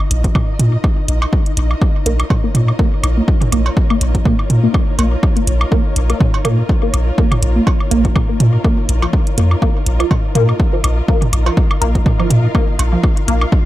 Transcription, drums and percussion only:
0.11 closed hi-hat
0.24 kick, closed hi-hat
0.35 kick, mid tom, low woodblock
0.59 closed hi-hat, mid tom
0.84 kick, low woodblock
1.08 closed hi-hat
1.22 cowbell, low woodblock
1.33 kick
1.46 closed hi-hat
1.57 closed hi-hat
1.71 low woodblock
1.82 kick, low woodblock
2.06 closed hi-hat
2.20 closed hi-hat, low woodblock
2.30 kick, mid tom, cowbell
2.55 closed hi-hat, mid tom
2.68 low woodblock
2.79 kick
3.03 closed hi-hat, low woodblock
3.28 kick
3.41 closed hi-hat, mid tom
3.52 closed hi-hat, low woodblock
3.66 cowbell
3.77 kick
3.90 low woodblock
4.01 closed hi-hat
4.15 kick, closed hi-hat
4.25 kick, mid tom
4.39 low woodblock
4.50 closed hi-hat, mid tom
4.74 kick, low woodblock
4.99 closed hi-hat, cowbell
5.23 kick, low woodblock
5.37 closed hi-hat
5.47 closed hi-hat
5.61 low woodblock
5.72 kick
5.96 closed hi-hat
6.10 closed hi-hat, low woodblock
6.20 kick, mid tom
6.34 cowbell
6.45 closed hi-hat, mid tom, low woodblock
6.69 kick
6.94 closed hi-hat, low woodblock
7.18 kick
7.32 closed hi-hat, mid tom, low woodblock
7.43 closed hi-hat
7.67 kick, cowbell
7.80 low woodblock
7.91 closed hi-hat
8.05 kick, closed hi-hat
8.16 kick, mid tom, low woodblock
8.40 closed hi-hat, mid tom
8.64 kick, low woodblock
8.89 closed hi-hat
9.02 cowbell, low woodblock
9.13 kick
9.27 closed hi-hat
9.38 closed hi-hat
9.51 low woodblock
9.62 kick, low woodblock
9.86 closed hi-hat
10.00 closed hi-hat, low woodblock
10.11 kick, mid tom, cowbell
10.35 closed hi-hat, mid tom
10.49 low woodblock
10.60 kick
10.84 closed hi-hat, low woodblock
11.08 kick
11.22 closed hi-hat, mid tom
11.33 closed hi-hat, low woodblock
11.46 cowbell
11.57 kick
11.71 low woodblock
11.82 closed hi-hat
11.95 kick, closed hi-hat
12.06 kick, mid tom
12.20 low woodblock
12.30 closed hi-hat, mid tom
12.55 kick, low woodblock
12.79 closed hi-hat, cowbell
13.04 kick, low woodblock
13.17 closed hi-hat
13.28 closed hi-hat
13.41 low woodblock
13.52 kick

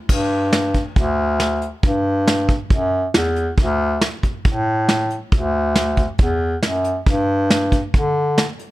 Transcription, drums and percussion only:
0.09 kick, crash
0.53 snare, closed hi-hat
0.74 kick, closed hi-hat
0.96 kick, closed hi-hat
1.40 snare, closed hi-hat
1.62 closed hi-hat
1.83 kick, closed hi-hat
2.27 snare, closed hi-hat
2.49 kick, closed hi-hat
2.70 kick, closed hi-hat
3.14 snare, closed hi-hat
3.36 closed hi-hat
3.57 kick, closed hi-hat
4.01 snare, closed hi-hat
4.23 kick, closed hi-hat
4.45 kick, closed hi-hat
4.89 snare, closed hi-hat
5.10 closed hi-hat
5.32 kick, closed hi-hat
5.75 snare, closed hi-hat
5.97 kick, closed hi-hat
6.18 kick, closed hi-hat
6.63 snare, closed hi-hat
6.84 closed hi-hat
7.06 kick, closed hi-hat
7.50 snare, closed hi-hat
7.72 kick, closed hi-hat
7.94 kick, closed hi-hat
8.38 snare, closed hi-hat
8.59 closed hi-hat

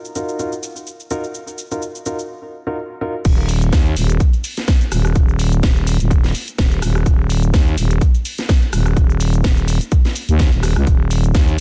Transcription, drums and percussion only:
0.05 shaker
0.16 shaker
0.29 shaker
0.39 shaker
0.52 shaker
0.63 shaker
0.76 shaker
0.87 shaker
1.00 shaker
1.11 shaker
1.24 shaker
1.35 shaker
1.48 shaker
1.58 shaker
1.71 shaker
1.82 shaker
1.95 shaker
2.06 shaker
2.19 shaker
3.25 kick, closed hi-hat, crash, shaker
3.49 open hi-hat, shaker
3.62 closed hi-hat, shaker
3.73 kick, snare, closed hi-hat, shaker
3.86 closed hi-hat, shaker
3.97 open hi-hat, shaker
4.10 closed hi-hat, shaker
4.20 kick, closed hi-hat, shaker
4.33 closed hi-hat, shaker
4.44 open hi-hat, shaker
4.57 snare, closed hi-hat, shaker
4.68 kick, snare, closed hi-hat, shaker
4.81 closed hi-hat, shaker
4.92 cross-stick, open hi-hat, shaker
5.05 cross-stick, shaker
5.16 kick, closed hi-hat, shaker
5.29 shaker
5.39 open hi-hat, shaker
5.52 closed hi-hat, shaker
5.63 kick, snare, closed hi-hat, shaker
5.76 closed hi-hat, shaker
5.87 open hi-hat, shaker
6.00 closed hi-hat, shaker
6.11 kick, closed hi-hat, shaker
6.24 snare, closed hi-hat, shaker
6.35 open hi-hat, shaker
6.48 closed hi-hat, shaker
6.58 kick, snare, closed hi-hat, shaker
6.72 closed hi-hat, shaker
6.82 cross-stick, open hi-hat, shaker
6.95 cross-stick, shaker
7.06 kick, closed hi-hat, shaker
7.30 open hi-hat, shaker
7.43 closed hi-hat, shaker
7.54 kick, snare, closed hi-hat, shaker
7.67 closed hi-hat, shaker
7.78 open hi-hat, shaker
7.91 closed hi-hat, shaker
8.01 kick, closed hi-hat, shaker
8.15 closed hi-hat, shaker
8.25 open hi-hat, shaker
8.38 snare, closed hi-hat, shaker
8.49 kick, snare, closed hi-hat, shaker
8.62 closed hi-hat, shaker
8.73 cross-stick, open hi-hat, shaker
8.86 cross-stick, shaker
8.97 kick, closed hi-hat, shaker
9.10 shaker
9.20 open hi-hat, shaker
9.34 closed hi-hat, shaker
9.44 kick, snare, closed hi-hat, shaker
9.57 closed hi-hat, shaker
9.68 open hi-hat, shaker
9.81 closed hi-hat, shaker
9.92 kick, closed hi-hat, shaker
10.05 snare, closed hi-hat, shaker
10.16 open hi-hat, shaker
10.29 closed hi-hat, shaker
10.39 kick, snare, closed hi-hat, shaker
10.53 closed hi-hat, shaker
10.63 cross-stick, open hi-hat, shaker
10.76 cross-stick, shaker
10.87 kick, closed hi-hat, shaker
11.11 open hi-hat, shaker
11.24 closed hi-hat, shaker
11.35 kick, snare, closed hi-hat, shaker
11.48 closed hi-hat, shaker

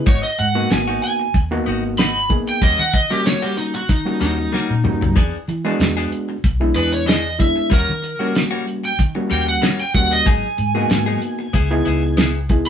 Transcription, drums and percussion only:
0.06 kick, closed hi-hat
0.39 closed hi-hat
0.70 snare, closed hi-hat, tambourine
1.03 closed hi-hat
1.34 kick, closed hi-hat
1.66 closed hi-hat
1.98 snare, closed hi-hat, tambourine
2.30 kick, closed hi-hat
2.62 kick, closed hi-hat
2.94 kick, closed hi-hat
3.26 snare, closed hi-hat, tambourine
3.58 closed hi-hat
3.89 kick, closed hi-hat
4.21 closed hi-hat
4.54 snare
4.85 mid tom
5.02 floor tom
5.17 kick, closed hi-hat
5.49 closed hi-hat
5.80 snare, closed hi-hat, tambourine
6.12 closed hi-hat
6.44 kick, closed hi-hat
6.76 closed hi-hat
7.08 snare, closed hi-hat, tambourine
7.40 kick, closed hi-hat
7.72 kick, closed hi-hat
8.04 closed hi-hat
8.35 snare, closed hi-hat, tambourine
8.67 closed hi-hat
8.99 kick, closed hi-hat
9.31 closed hi-hat
9.62 snare, closed hi-hat, tambourine
9.94 kick, closed hi-hat
10.26 kick, closed hi-hat
10.58 closed hi-hat
10.90 snare, closed hi-hat, tambourine
11.22 closed hi-hat
11.54 kick, closed hi-hat
11.86 closed hi-hat
12.17 snare, closed hi-hat, tambourine
12.49 kick, closed hi-hat

